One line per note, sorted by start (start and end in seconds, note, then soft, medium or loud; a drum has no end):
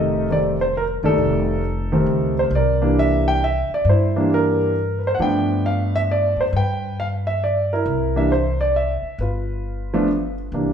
0.00 0.99 F1 medium
0.00 0.27 D#3 medium
0.00 0.27 G3 medium
0.00 0.27 A3 medium
0.00 0.27 D#4 medium
0.00 0.56 A4 medium
0.00 0.28 D#5 medium
0.30 0.56 D#3 soft
0.30 0.56 G3 soft
0.30 0.56 A3 soft
0.30 0.56 C4 medium
0.30 0.39 D5 medium
0.61 0.74 C5 medium
0.77 0.83 A#4 medium
1.03 1.17 F#1 medium
1.03 1.60 D#3 medium
1.03 1.60 G3 medium
1.03 1.61 A3 medium
1.03 2.34 D#4 medium
1.03 2.34 A4 medium
1.03 1.61 D5 medium
1.18 2.03 F1 medium
1.92 2.49 D#3 medium
1.92 2.49 G3 medium
1.92 2.49 A3 medium
1.92 2.49 C4 medium
2.06 2.48 C#2 medium
2.39 2.44 C5 medium
2.51 3.65 C2 medium
2.55 3.24 A#4 medium
2.55 2.99 D5 medium
2.81 3.38 E3 medium
2.81 3.38 G3 medium
2.81 3.38 A#3 medium
2.81 3.38 D4 medium
2.99 3.28 E5 loud
3.28 3.43 G5 loud
3.44 3.70 E5 medium
3.70 muted upright bass stroke soft
3.74 3.87 D5 medium
3.85 5.15 G2 medium
3.89 4.57 E4 medium
3.89 4.29 C5 medium
4.16 4.72 E3 medium
4.16 4.72 G3 medium
4.16 4.72 A#3 medium
4.16 4.72 D4 medium
4.34 5.00 A#4 medium
4.99 5.05 B4 soft
5.07 5.15 C5 medium
5.15 5.19 F#5 medium
5.19 6.33 G2 medium
5.19 6.43 F3 medium
5.19 6.44 A3 medium
5.19 6.44 B3 soft
5.19 6.44 D4 medium
5.19 5.90 B4 medium
5.19 5.66 G5 medium
5.66 5.95 F5 medium
5.96 6.01 E5 loud
6.11 6.40 D5 medium
6.36 6.51 F#2 medium
6.41 6.46 C5 medium
6.53 7.82 G2 medium
6.53 6.96 G5 medium
6.57 7.24 B4 medium
7.00 7.06 F5 medium
7.27 7.42 E5 medium
7.44 7.70 D5 medium
7.73 8.28 E4 medium
7.73 8.18 A#4 medium
7.86 9.00 C2 medium
8.16 8.29 E3 medium
8.16 8.29 G3 medium
8.16 8.29 A#3 soft
8.16 8.29 D4 medium
8.16 8.32 E5 medium
8.32 8.59 C5 medium
8.61 8.76 D5 medium
8.76 9.17 E5 medium
9.03 muted upright bass stroke soft
9.18 10.48 G1 medium
9.18 10.35 F4 soft
9.18 10.34 B4 medium
9.94 10.07 F3 medium
9.94 10.07 A3 medium
9.94 10.07 B3 medium
9.94 10.07 D4 medium
10.52 10.73 C2 medium
10.52 10.73 E3 soft
10.52 10.73 G3 soft
10.52 10.73 A#3 soft
10.52 10.73 D4 medium